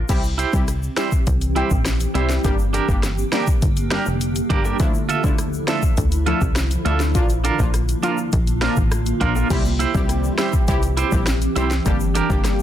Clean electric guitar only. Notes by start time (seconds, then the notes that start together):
0.38 E4 G4 C5
0.97 E4 G4 C5
1.56 E4 G4 C5
2.14 E4 G4 C5
2.73 D4 G4 A#4
3.32 D4 G4 A#4
3.91 D4 G4 A#4
4.50 D4 G4 A#4
4.64 D4 G4 A#4
5.09 F4 A4 E5
5.68 F4 A4 E5
6.26 F4 A4 E5
6.85 F4 A4 E5
7.44 D4 F4 A#4
8.03 D4 F4 A#4
8.62 D4 F4 A#4
9.20 D4 F4 A#4
9.36 D4 F4
9.79 E4 G4 C5
10.38 E4 G4 C5
10.97 E4 G4 C5
11.56 E4 G4 C5
12.15 D4 G4 A#4